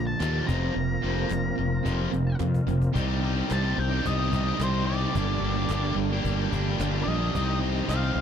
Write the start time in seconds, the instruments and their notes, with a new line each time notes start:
Already playing: fingered electric bass A#1, overdriven electric guitar A#2 D3, tonewheel organ D3 A#3 F4 A#4, distorted electric guitar F3
0.07 lead electric guitar A5
0.20 fingered electric bass D#2, overdriven electric guitar A#2 D3 A#3, distorted electric guitar F3, cajon slap, clap
0.47 fingered electric bass F1, overdriven electric guitar F2 C3 F3, tonewheel organ B3 C#4 F#4 B4, lead electric guitar A#5, cajon bass
0.65 tonewheel organ A#3 C4 F4 A#4
0.75 fingered electric bass F1, overdriven electric guitar F2 C3, cajon slap
1.03 fingered electric bass F1, overdriven electric guitar F2 C3 F3, cajon slap
1.30 fingered electric bass F1, overdriven electric guitar F2 C3, cajon slap, clap
1.58 fingered electric bass F1, overdriven electric guitar F2 C3, cajon slap
1.85 fingered electric bass F1, overdriven electric guitar F2 C3 F3, cajon bass
2.12 fingered electric bass F1, overdriven electric guitar F2 C3, cajon bass, cajon slap
2.40 fingered electric bass F2, overdriven electric guitar F2 C3, cajon bass, cajon slap, clap
2.54 cajon bass
2.67 fingered electric bass F1, overdriven electric guitar F2 C3, cajon bass
2.81 cajon bass
2.93 fingered electric bass C2, overdriven electric guitar C3 D#3 G3 D#4 G4, distorted electric guitar C4, tonewheel organ D#4 G4 C5 D5, cajon bass
3.20 distorted electric guitar C3 C4, overdriven electric guitar D#3 G3
3.24 overdriven electric guitar D#4 G4
3.33 distorted electric guitar G3 C4 D#4
3.50 fingered electric bass C2, overdriven electric guitar C3 D#3 G3 D#4 G4, distorted electric guitar C4, lead electric guitar A5, cajon slap, clap
3.63 overdriven electric guitar G3 D#4 G4, distorted electric guitar C4
3.77 fingered electric bass C2, lead electric guitar G5, muted distorted electric guitar stroke, muted overdriven electric guitar stroke
3.88 distorted electric guitar C4 D#4, overdriven electric guitar G4
3.92 overdriven electric guitar G3 D#4
4.05 fingered electric bass C2, lead electric guitar D#5, cajon bass
4.19 overdriven electric guitar G3 D#4 G4
4.29 distorted electric guitar C3 C4, cajon bass
4.34 overdriven electric guitar D#3 G3 D#4 G4, lead electric guitar D#5
4.48 overdriven electric guitar G3 D#4 G4
4.59 fingered electric bass C2, overdriven electric guitar C3 D#3 G3 D#4 G4, distorted electric guitar C4, lead electric guitar C5, cajon slap, clap
4.70 distorted electric guitar C4 D#4, overdriven electric guitar G4
4.74 overdriven electric guitar G3 D#4
4.84 distorted electric guitar C3 C4, lead electric guitar D5
4.88 overdriven electric guitar D#3 G3 D#4 G4
4.98 distorted electric guitar G3 C4 D#4
5.14 fingered electric bass G1, overdriven electric guitar G2 D3 G3 A#3 D4, tonewheel organ D4 G4 A#4 D5, cajon bass
5.18 overdriven electric guitar G4
5.40 fingered electric bass G1, distorted electric guitar D3, overdriven electric guitar G3 A#3
5.44 overdriven electric guitar D4 G4
5.53 distorted electric guitar G3 A#3 D4
5.69 fingered electric bass G1, overdriven electric guitar G2 D3 G3 A#3 D4 G4, cajon slap, clap
5.84 overdriven electric guitar G3 A#3 D4 G4
5.96 fingered electric bass G1, muted distorted electric guitar stroke, muted overdriven electric guitar stroke
6.09 distorted electric guitar D4, overdriven electric guitar G4
6.14 overdriven electric guitar G3 A#3 D4
6.24 fingered electric bass G1, cajon bass
6.39 overdriven electric guitar G3 A#3 D4 G4
6.50 fingered electric bass G1, distorted electric guitar D3, overdriven electric guitar G3 A#3 D4, cajon bass
6.54 overdriven electric guitar G4
6.68 overdriven electric guitar G3 A#3 D4 G4
6.79 fingered electric bass G1, overdriven electric guitar G2 D3 G3 A#3 D4 G4, cajon slap, clap
6.91 distorted electric guitar D4, overdriven electric guitar G4
6.95 overdriven electric guitar G3 A#3 D4
7.03 fingered electric bass A#1, distorted electric guitar D3, lead electric guitar D#5
7.08 overdriven electric guitar G3 A#3 D4 G4
7.18 distorted electric guitar G3 A#3 D4
7.34 fingered electric bass C2, overdriven electric guitar C3 G3 C4 D#4 G4, tonewheel organ D#4 G4 C5 D#5, cajon bass
7.59 distorted electric guitar C3, overdriven electric guitar G3 C4
7.63 overdriven electric guitar D#4 G4
7.72 distorted electric guitar G3 C4 D#4
7.88 fingered electric bass C2, overdriven electric guitar C3 G3 C4 D#4 G4, lead electric guitar F5, cajon slap, clap
8.03 distorted electric guitar G3, overdriven electric guitar C4 D#4 G4
8.15 fingered electric bass C2, muted distorted electric guitar stroke, muted overdriven electric guitar stroke